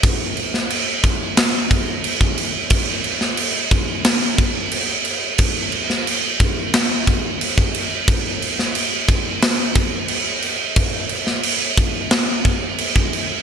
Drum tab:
CC |x-x-x-x-x-x-x-x-|x-x-x-x-x-x-x-x-|x-x-x-x-x-x-x-x-|x-x-x-x-x-x-x-x-|
SD |---o----o-------|---o----o-------|---o----o-------|---o----o-------|
BD |o-----o---o--o--|o-----o---o-----|o-----o---o--o--|o-----o---o-----|

CC |x-x-x-x-x-x-x-x-|
SD |---o----o-------|
BD |o-----o---o--o--|